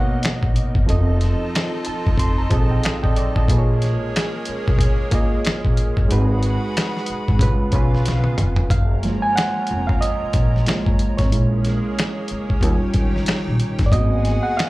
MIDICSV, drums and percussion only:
0, 0, Header, 1, 2, 480
1, 0, Start_track
1, 0, Key_signature, 6, "major"
1, 0, Tempo, 652174
1, 646, Time_signature, 4, 2, 24, 8
1, 10815, End_track
2, 0, Start_track
2, 0, Title_t, "Drums"
2, 168, Note_on_c, 9, 42, 80
2, 182, Note_on_c, 9, 26, 101
2, 187, Note_on_c, 9, 38, 125
2, 242, Note_off_c, 9, 42, 0
2, 256, Note_off_c, 9, 26, 0
2, 261, Note_off_c, 9, 38, 0
2, 314, Note_on_c, 9, 36, 103
2, 387, Note_off_c, 9, 36, 0
2, 411, Note_on_c, 9, 42, 71
2, 484, Note_off_c, 9, 42, 0
2, 552, Note_on_c, 9, 36, 94
2, 626, Note_off_c, 9, 36, 0
2, 653, Note_on_c, 9, 42, 85
2, 727, Note_off_c, 9, 42, 0
2, 890, Note_on_c, 9, 42, 54
2, 907, Note_on_c, 9, 38, 34
2, 963, Note_off_c, 9, 42, 0
2, 981, Note_off_c, 9, 38, 0
2, 1143, Note_on_c, 9, 42, 93
2, 1145, Note_on_c, 9, 26, 94
2, 1150, Note_on_c, 9, 38, 102
2, 1217, Note_off_c, 9, 42, 0
2, 1219, Note_off_c, 9, 26, 0
2, 1224, Note_off_c, 9, 38, 0
2, 1359, Note_on_c, 9, 42, 69
2, 1433, Note_off_c, 9, 42, 0
2, 1520, Note_on_c, 9, 36, 83
2, 1594, Note_off_c, 9, 36, 0
2, 1601, Note_on_c, 9, 36, 90
2, 1615, Note_on_c, 9, 42, 79
2, 1675, Note_off_c, 9, 36, 0
2, 1688, Note_off_c, 9, 42, 0
2, 1844, Note_on_c, 9, 42, 64
2, 1848, Note_on_c, 9, 36, 97
2, 1918, Note_off_c, 9, 42, 0
2, 1921, Note_off_c, 9, 36, 0
2, 2087, Note_on_c, 9, 42, 82
2, 2100, Note_on_c, 9, 26, 99
2, 2105, Note_on_c, 9, 38, 127
2, 2160, Note_off_c, 9, 42, 0
2, 2174, Note_off_c, 9, 26, 0
2, 2179, Note_off_c, 9, 38, 0
2, 2235, Note_on_c, 9, 36, 106
2, 2309, Note_off_c, 9, 36, 0
2, 2328, Note_on_c, 9, 42, 67
2, 2402, Note_off_c, 9, 42, 0
2, 2472, Note_on_c, 9, 36, 98
2, 2546, Note_off_c, 9, 36, 0
2, 2565, Note_on_c, 9, 36, 110
2, 2572, Note_on_c, 9, 42, 93
2, 2638, Note_off_c, 9, 36, 0
2, 2646, Note_off_c, 9, 42, 0
2, 2810, Note_on_c, 9, 42, 60
2, 2827, Note_on_c, 9, 38, 33
2, 2884, Note_off_c, 9, 42, 0
2, 2901, Note_off_c, 9, 38, 0
2, 3062, Note_on_c, 9, 42, 91
2, 3064, Note_on_c, 9, 26, 85
2, 3069, Note_on_c, 9, 38, 102
2, 3136, Note_off_c, 9, 42, 0
2, 3138, Note_off_c, 9, 26, 0
2, 3142, Note_off_c, 9, 38, 0
2, 3278, Note_on_c, 9, 42, 69
2, 3352, Note_off_c, 9, 42, 0
2, 3442, Note_on_c, 9, 36, 89
2, 3516, Note_off_c, 9, 36, 0
2, 3523, Note_on_c, 9, 36, 79
2, 3537, Note_on_c, 9, 42, 80
2, 3596, Note_off_c, 9, 36, 0
2, 3610, Note_off_c, 9, 42, 0
2, 3764, Note_on_c, 9, 42, 65
2, 3769, Note_on_c, 9, 36, 96
2, 3837, Note_off_c, 9, 42, 0
2, 3842, Note_off_c, 9, 36, 0
2, 4009, Note_on_c, 9, 42, 88
2, 4022, Note_on_c, 9, 26, 98
2, 4027, Note_on_c, 9, 38, 125
2, 4082, Note_off_c, 9, 42, 0
2, 4096, Note_off_c, 9, 26, 0
2, 4101, Note_off_c, 9, 38, 0
2, 4156, Note_on_c, 9, 36, 114
2, 4229, Note_off_c, 9, 36, 0
2, 4249, Note_on_c, 9, 42, 67
2, 4323, Note_off_c, 9, 42, 0
2, 4393, Note_on_c, 9, 36, 87
2, 4467, Note_off_c, 9, 36, 0
2, 4494, Note_on_c, 9, 42, 82
2, 4567, Note_off_c, 9, 42, 0
2, 4730, Note_on_c, 9, 42, 59
2, 4803, Note_off_c, 9, 42, 0
2, 4982, Note_on_c, 9, 42, 85
2, 4984, Note_on_c, 9, 26, 86
2, 4989, Note_on_c, 9, 38, 118
2, 5055, Note_off_c, 9, 42, 0
2, 5057, Note_off_c, 9, 26, 0
2, 5062, Note_off_c, 9, 38, 0
2, 5128, Note_on_c, 9, 38, 34
2, 5199, Note_on_c, 9, 42, 72
2, 5201, Note_off_c, 9, 38, 0
2, 5272, Note_off_c, 9, 42, 0
2, 5361, Note_on_c, 9, 36, 86
2, 5434, Note_off_c, 9, 36, 0
2, 5441, Note_on_c, 9, 36, 89
2, 5453, Note_on_c, 9, 42, 83
2, 5515, Note_off_c, 9, 36, 0
2, 5527, Note_off_c, 9, 42, 0
2, 5680, Note_on_c, 9, 42, 65
2, 5688, Note_on_c, 9, 36, 93
2, 5754, Note_off_c, 9, 42, 0
2, 5761, Note_off_c, 9, 36, 0
2, 5848, Note_on_c, 9, 38, 37
2, 5922, Note_off_c, 9, 38, 0
2, 5929, Note_on_c, 9, 42, 79
2, 5948, Note_on_c, 9, 38, 62
2, 6002, Note_off_c, 9, 42, 0
2, 6022, Note_off_c, 9, 38, 0
2, 6063, Note_on_c, 9, 48, 63
2, 6136, Note_off_c, 9, 48, 0
2, 6166, Note_on_c, 9, 45, 95
2, 6169, Note_on_c, 9, 42, 64
2, 6240, Note_off_c, 9, 45, 0
2, 6243, Note_off_c, 9, 42, 0
2, 6303, Note_on_c, 9, 43, 92
2, 6377, Note_off_c, 9, 43, 0
2, 6405, Note_on_c, 9, 36, 112
2, 6410, Note_on_c, 9, 42, 79
2, 6478, Note_off_c, 9, 36, 0
2, 6483, Note_off_c, 9, 42, 0
2, 6646, Note_on_c, 9, 42, 53
2, 6664, Note_on_c, 9, 38, 34
2, 6720, Note_off_c, 9, 42, 0
2, 6738, Note_off_c, 9, 38, 0
2, 6899, Note_on_c, 9, 42, 83
2, 6902, Note_on_c, 9, 26, 82
2, 6906, Note_on_c, 9, 38, 107
2, 6973, Note_off_c, 9, 42, 0
2, 6975, Note_off_c, 9, 26, 0
2, 6980, Note_off_c, 9, 38, 0
2, 7115, Note_on_c, 9, 42, 65
2, 7189, Note_off_c, 9, 42, 0
2, 7281, Note_on_c, 9, 36, 82
2, 7355, Note_off_c, 9, 36, 0
2, 7377, Note_on_c, 9, 42, 86
2, 7451, Note_off_c, 9, 42, 0
2, 7605, Note_on_c, 9, 42, 67
2, 7609, Note_on_c, 9, 36, 92
2, 7678, Note_off_c, 9, 42, 0
2, 7682, Note_off_c, 9, 36, 0
2, 7772, Note_on_c, 9, 38, 35
2, 7846, Note_off_c, 9, 38, 0
2, 7849, Note_on_c, 9, 42, 77
2, 7863, Note_on_c, 9, 26, 92
2, 7868, Note_on_c, 9, 38, 118
2, 7923, Note_off_c, 9, 42, 0
2, 7937, Note_off_c, 9, 26, 0
2, 7941, Note_off_c, 9, 38, 0
2, 7996, Note_on_c, 9, 36, 108
2, 8070, Note_off_c, 9, 36, 0
2, 8090, Note_on_c, 9, 42, 61
2, 8163, Note_off_c, 9, 42, 0
2, 8231, Note_on_c, 9, 42, 49
2, 8234, Note_on_c, 9, 36, 90
2, 8250, Note_on_c, 9, 38, 36
2, 8305, Note_off_c, 9, 42, 0
2, 8308, Note_off_c, 9, 36, 0
2, 8324, Note_off_c, 9, 38, 0
2, 8334, Note_on_c, 9, 42, 78
2, 8408, Note_off_c, 9, 42, 0
2, 8571, Note_on_c, 9, 42, 53
2, 8589, Note_on_c, 9, 38, 32
2, 8645, Note_off_c, 9, 42, 0
2, 8662, Note_off_c, 9, 38, 0
2, 8821, Note_on_c, 9, 42, 90
2, 8824, Note_on_c, 9, 26, 83
2, 8828, Note_on_c, 9, 38, 110
2, 8895, Note_off_c, 9, 42, 0
2, 8897, Note_off_c, 9, 26, 0
2, 8902, Note_off_c, 9, 38, 0
2, 9038, Note_on_c, 9, 42, 71
2, 9112, Note_off_c, 9, 42, 0
2, 9200, Note_on_c, 9, 36, 85
2, 9273, Note_off_c, 9, 36, 0
2, 9281, Note_on_c, 9, 36, 83
2, 9293, Note_on_c, 9, 42, 78
2, 9354, Note_off_c, 9, 36, 0
2, 9366, Note_off_c, 9, 42, 0
2, 9521, Note_on_c, 9, 42, 62
2, 9526, Note_on_c, 9, 36, 92
2, 9594, Note_off_c, 9, 42, 0
2, 9599, Note_off_c, 9, 36, 0
2, 9686, Note_on_c, 9, 38, 37
2, 9760, Note_off_c, 9, 38, 0
2, 9762, Note_on_c, 9, 42, 81
2, 9776, Note_on_c, 9, 26, 93
2, 9780, Note_on_c, 9, 38, 119
2, 9835, Note_off_c, 9, 42, 0
2, 9849, Note_off_c, 9, 26, 0
2, 9854, Note_off_c, 9, 38, 0
2, 10006, Note_on_c, 9, 42, 65
2, 10080, Note_off_c, 9, 42, 0
2, 10147, Note_on_c, 9, 42, 44
2, 10151, Note_on_c, 9, 36, 86
2, 10165, Note_on_c, 9, 38, 34
2, 10220, Note_off_c, 9, 42, 0
2, 10224, Note_off_c, 9, 36, 0
2, 10239, Note_off_c, 9, 38, 0
2, 10243, Note_on_c, 9, 36, 106
2, 10250, Note_on_c, 9, 42, 78
2, 10317, Note_off_c, 9, 36, 0
2, 10323, Note_off_c, 9, 42, 0
2, 10487, Note_on_c, 9, 42, 51
2, 10504, Note_on_c, 9, 38, 34
2, 10560, Note_off_c, 9, 42, 0
2, 10578, Note_off_c, 9, 38, 0
2, 10739, Note_on_c, 9, 42, 85
2, 10741, Note_on_c, 9, 26, 83
2, 10746, Note_on_c, 9, 38, 99
2, 10813, Note_off_c, 9, 42, 0
2, 10815, Note_off_c, 9, 26, 0
2, 10815, Note_off_c, 9, 38, 0
2, 10815, End_track
0, 0, End_of_file